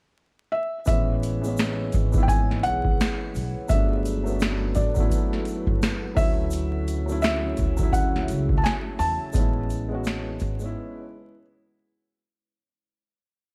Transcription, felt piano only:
0.52 0.86 E5 medium
0.87 2.27 E5 medium
2.23 2.29 G5 medium
2.28 2.65 G#5 medium
2.63 3.73 F#5 loud
3.69 4.79 E5 medium
4.75 5.42 D5 medium
6.16 7.21 E5 loud
7.22 7.95 E5 medium
7.93 8.60 F#5 medium
8.58 8.64 A5 medium
8.64 8.72 G#5 medium
8.99 11.42 A5 loud

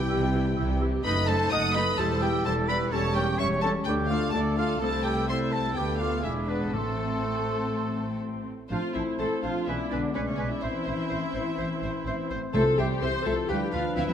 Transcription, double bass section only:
0.10 0.51 C2 medium
0.57 0.98 C2 medium
1.04 1.45 F#1 medium
1.52 1.93 F#1 medium
1.99 2.40 E1 medium
2.45 2.86 E1 medium
2.93 3.34 E1 medium
3.40 3.81 E1 medium
3.87 4.28 D2 medium
4.34 4.75 D2 medium
4.82 5.72 C2 medium
5.76 6.24 D2 soft
6.24 6.73 E1 soft
6.75 8.48 A1 soft
8.71 8.79 A1 soft
8.95 9.03 A1 soft
9.19 9.27 A1 soft
9.43 9.51 A1 soft
9.68 9.76 B1 soft
9.92 10.00 B1 soft
10.16 10.24 B1 soft
10.40 10.48 B1 soft
10.64 10.72 A1 soft
10.87 10.95 A1 soft
11.11 11.19 A1 soft
11.34 11.42 A1 soft
11.58 11.66 A1 soft
11.82 11.90 A1 soft
12.05 12.13 A1 soft
12.31 12.39 A1 soft
12.54 12.62 C2 soft
12.78 12.86 C2 soft
13.01 13.09 C2 soft
13.25 13.33 C2 soft
13.49 13.57 D2 medium
13.73 13.81 D2 medium
13.96 14.04 D2 medium

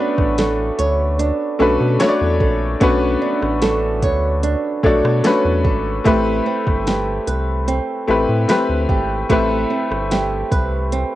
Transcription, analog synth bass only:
0.18 0.71 A1 medium
0.79 1.31 D2 loud
1.60 1.77 B1 loud
1.80 1.98 B2 loud
2.21 2.42 E2 medium
2.40 2.76 A#1 loud
2.81 3.16 B1 loud
3.42 4.04 A1 loud
4.03 4.55 D2 loud
4.84 5.01 B1 loud
5.04 5.22 B2 loud
5.45 5.66 E2 medium
5.65 6.00 G#1 medium
6.06 6.41 A1 loud
6.67 7.19 G1 medium
7.27 7.80 C2 medium
8.08 8.26 A1 loud
8.29 8.46 A2 loud
8.69 8.87 D2 medium
8.89 9.24 G#1 medium
9.30 9.65 A1 loud
9.91 10.43 G1 loud
10.52 11.04 C2 medium

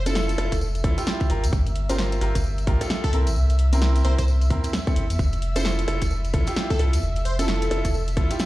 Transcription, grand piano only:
0.06 0.36 E4 medium
0.06 0.36 F4 medium
0.06 0.36 A4 medium
0.38 0.51 E4 medium
0.38 0.51 F4 medium
0.38 0.51 A4 loud
0.84 0.96 E4 medium
0.84 0.96 F4 medium
0.84 0.96 A4 loud
0.98 1.28 E4 medium
0.98 1.28 F4 medium
0.98 1.28 G4 loud
1.30 1.42 F4 medium
1.30 1.42 G4 medium
1.30 1.42 A#4 loud
1.89 2.19 F4 medium
1.89 2.19 G4 medium
1.89 2.19 A#4 medium
2.21 2.34 F4 loud
2.21 2.34 G4 medium
2.21 2.34 A#4 loud
2.67 2.79 F4 medium
2.67 2.79 G4 medium
2.67 2.79 A#4 loud
2.81 3.11 F4 medium
2.81 3.11 G4 medium
2.81 3.11 A4 loud
3.13 3.26 C4 medium
3.13 3.26 E4 medium
3.13 3.26 A#4 medium
3.73 4.02 C4 medium
3.73 4.02 E4 medium
3.73 4.03 A#4 medium
4.05 4.17 C4 medium
4.05 4.17 E4 medium
4.05 4.17 A#4 loud
4.50 4.68 C4 medium
4.50 4.68 E4 medium
4.50 4.68 A#4 medium
4.87 5.03 C4 medium
4.87 5.03 E4 medium
4.87 5.03 A4 medium
5.56 5.86 E4 medium
5.56 5.86 F4 medium
5.56 5.86 A4 medium
5.88 6.00 E4 loud
5.88 6.00 F4 medium
5.88 6.00 A4 loud
6.34 6.45 E4 medium
6.34 6.45 F4 medium
6.34 6.45 A4 loud
6.47 6.77 E4 medium
6.47 6.77 F4 medium
6.47 6.77 G4 loud
6.80 6.92 E4 medium
6.80 6.92 F4 medium
6.80 6.92 A4 loud
7.39 7.69 E4 medium
7.39 7.69 F4 medium
7.39 7.69 A4 medium
7.71 7.84 E4 loud
7.71 7.84 F4 medium
7.71 7.84 A4 loud
8.17 8.29 E4 medium
8.17 8.29 F4 medium
8.17 8.29 A4 loud
8.31 8.46 E4 medium
8.31 8.46 F4 medium
8.31 8.46 G4 loud

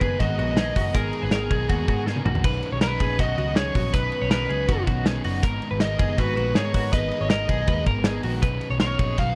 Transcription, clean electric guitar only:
0.01 0.19 G#4 medium
0.20 0.37 F#4 medium
0.39 0.56 F#4 medium
0.57 0.75 G#4 medium
0.76 0.94 F#4 medium
0.94 1.22 A#4 loud
1.22 1.32 B4 medium
1.32 1.51 A#4 medium
1.50 1.69 G#4 medium
1.69 1.87 F#4 medium
1.88 2.06 F#4 medium
2.06 2.25 G#4 medium
2.25 2.44 F#4 medium
2.44 2.71 B4 loud
2.72 2.81 C#5 medium
2.81 3.00 A#4 loud
3.00 3.19 G#4 medium
3.19 3.37 F#4 medium
3.38 3.56 F#4 medium
3.57 3.75 G#4 medium
3.75 3.94 F#4 medium
3.94 4.20 B4 loud
4.22 4.31 C#5 medium
4.31 4.50 A#4 medium
4.49 4.68 G#4 medium
4.68 4.86 F#4 medium
4.87 5.06 F#4 medium
5.06 5.24 G#4 medium
5.25 5.43 F#4 medium
5.43 5.70 A#4 loud
5.71 5.80 B4 medium
5.80 5.99 A#4 loud
5.99 6.18 G#4 medium
6.18 6.36 F#4 medium
6.37 6.55 F#4 medium
6.55 6.74 G#4 medium
6.74 6.93 F#4 medium
6.93 7.19 B4 loud
7.21 7.30 C#5 medium
7.31 7.49 A#4 medium
7.49 7.68 G#4 medium
7.68 7.86 B4 medium
7.87 8.06 A#4 medium
8.05 8.24 G#4 medium
8.24 8.43 F#4 medium
8.42 8.69 B4 loud
8.71 8.80 C#5 medium
8.80 8.99 A#4 medium
8.99 9.17 G#4 medium
9.17 9.35 F#4 medium

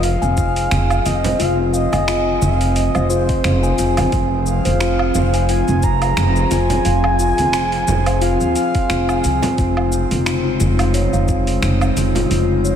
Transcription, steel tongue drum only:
0.03 0.21 F5 medium
0.22 0.36 G#5 medium
0.37 1.04 F4 medium
1.24 1.33 C5 medium
1.39 1.58 F4 loud
1.74 1.92 F5 medium
1.93 2.06 G#5 loud
2.08 2.75 F4 medium
2.95 3.04 C5 medium
3.10 3.28 F4 medium
3.44 3.62 F5 medium
3.63 3.77 G#5 medium
3.78 4.45 F4 medium
4.65 4.74 C5 loud
4.81 4.99 F4 loud
5.15 5.33 F5 medium
5.34 5.47 G#5 loud
5.49 6.16 F4 medium
6.36 6.45 C5 medium
6.51 6.69 F4 medium
6.85 7.03 F5 medium
7.04 7.18 G#5 loud
7.19 7.86 F4 medium
8.07 8.15 C5 loud
8.22 8.40 F4 loud
8.56 8.74 G#5 medium
8.90 9.08 F4 medium
9.08 9.22 G#5 medium
9.42 9.56 F4 medium
9.57 10.24 F4 medium
10.45 10.59 F4 medium
10.60 10.78 F4 medium
10.94 11.12 C#5 medium
11.13 11.27 F5 loud
11.28 11.95 F4 medium
12.15 12.29 F4 medium
12.30 12.48 F4 loud
12.64 12.76 C#5 medium

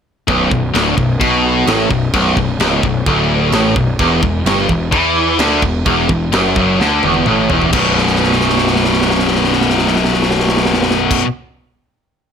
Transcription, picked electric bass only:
0.28 0.50 B0 loud
0.52 0.73 B0 medium
0.74 0.96 D1 medium
0.97 1.19 B0 medium
1.21 1.64 B1 medium
1.67 1.89 A1 loud
1.90 2.12 B0 medium
2.14 2.35 B0 medium
2.37 2.58 B0 medium
2.59 2.81 C#1 loud
2.83 3.05 B0 medium
3.06 3.49 D1 medium
3.52 3.74 A1 loud
3.76 3.97 B0 medium
3.99 4.21 E1 medium
4.23 4.44 E1 medium
4.45 4.67 G1 medium
4.69 4.91 E1 medium
4.92 5.36 E2 medium
5.39 5.61 D2 loud
5.63 5.84 E1 medium
5.86 6.08 E1 loud
6.10 6.31 E1 medium
6.33 6.55 F#1 medium
6.56 6.78 F#1 medium
6.79 7.01 D2 medium
7.03 7.25 E1 loud
7.26 7.48 A1 loud
7.49 7.72 E1 medium
7.74 11.15 B0 medium

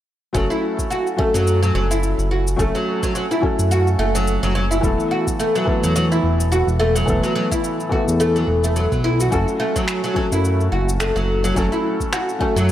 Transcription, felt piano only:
0.33 1.15 F#3 medium
0.33 1.15 A3 medium
0.33 1.16 C#4 medium
0.33 1.17 F#4 medium
0.37 1.17 A4 medium
1.16 2.55 F#3 medium
1.16 2.56 A3 medium
1.16 2.56 C#4 medium
1.16 2.57 F#4 medium
1.16 2.57 A4 medium
2.56 3.39 F#3 medium
2.56 3.39 A3 medium
2.56 3.40 C#4 medium
2.56 3.40 F#4 medium
2.56 3.41 A4 medium
3.40 4.79 F#3 medium
3.40 4.80 A3 medium
3.40 4.80 C#4 medium
3.40 4.81 F#4 medium
3.44 4.81 A4 medium
4.81 5.63 E3 medium
4.81 5.64 A3 medium
4.81 5.64 B3 medium
4.81 5.65 E4 medium
4.81 5.65 A4 medium
5.65 7.03 E3 medium
5.65 7.04 A3 medium
5.65 7.04 B3 medium
5.65 7.05 E4 medium
5.65 7.05 A4 medium
7.06 7.88 E3 medium
7.06 7.88 A3 medium
7.06 7.89 B3 medium
7.06 7.89 E4 medium
7.10 7.90 A4 loud
7.89 9.28 E3 medium
7.89 9.28 A3 medium
7.89 9.29 B3 medium
7.89 9.29 E4 medium
7.93 9.30 A4 medium
9.30 10.12 F#3 medium
9.30 10.13 A3 medium
9.30 10.13 C#4 medium
9.30 10.14 F#4 medium
9.30 10.14 A4 loud
10.14 11.52 F#3 medium
10.14 11.53 A3 medium
10.14 11.53 C#4 medium
10.14 11.54 F#4 medium
10.18 11.54 A4 medium
11.54 12.37 F#3 medium
11.54 12.37 A3 medium
11.54 12.38 C#4 medium
11.54 12.38 F#4 medium
11.58 12.39 A4 loud
12.39 12.72 F#3 medium
12.39 12.72 A3 medium
12.39 12.72 C#4 medium
12.39 12.72 F#4 medium
12.39 12.72 A4 medium

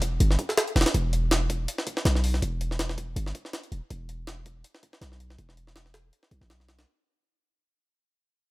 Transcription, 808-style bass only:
0.00 0.19 E1 medium
0.20 0.37 G1 loud
0.76 0.85 E1 medium
0.94 1.67 E1 loud
2.05 2.41 B1 loud
2.42 3.15 E1 loud
3.16 3.33 G1 loud
3.72 3.81 E1 medium
3.91 4.63 E1 loud
5.01 5.37 B1 loud
5.39 6.11 E1 loud
6.31 6.40 B1 medium
6.41 6.51 A1 medium
6.49 6.85 B1 medium

